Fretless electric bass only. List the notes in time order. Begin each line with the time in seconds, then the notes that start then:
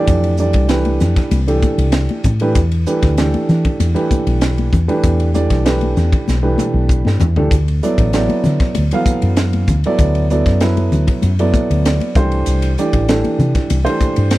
0.08 F2
0.55 C2
1.01 F2
1.31 C2
1.78 C2
2.24 A2
2.56 E2
3.03 D2
3.34 muted fretless electric bass stroke
3.49 E3
3.80 E2
4.11 muted fretless electric bass stroke
4.26 B1
4.73 E2
5.04 E2
5.51 B1
5.97 E2
6.28 B1
6.74 B1
7.06 G2
7.21 E2
7.37 D2
7.51 D2
7.98 A1
8.46 D3
8.77 D2
9.06 muted fretless electric bass stroke
9.23 F#2
9.68 D2
9.99 D2
10.46 F#2
10.92 D2
11.23 F#2
11.70 D2
12.15 C2
12.47 C2
12.94 A1
13.25 muted fretless electric bass stroke
13.38 C3
13.70 C2
14.01 muted fretless electric bass stroke
14.17 G2